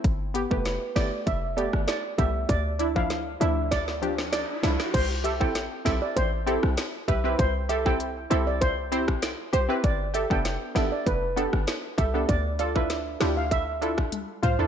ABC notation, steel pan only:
X:1
M:4/4
L:1/16
Q:1/4=98
K:C
V:1 name="Steel pan"
z3 B z2 d z e z d z d z e z | d z2 f2 z e2 d3 z d3 z | c z e g z2 e d c3 z3 e z | c z e g z2 e d c3 z3 c z |
d z e g z2 e d B3 z3 e z | d z d e z2 e f e3 z3 f z |]